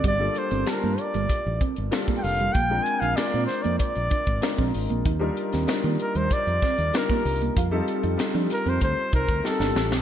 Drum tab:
HH |x-xxx-xxx-xxx-ox|x-xxx-xxxxxxx-ox|x-xxx-xxxxxxxxox|x-xxx-xxx-xx----|
SD |----o-------o---|----o-o-----o---|---oo-----o-o---|----o-o-----oooo|
BD |o-------o-o--o--|o-------o-oo-o--|o-------o-o--o--|o-------o-oo----|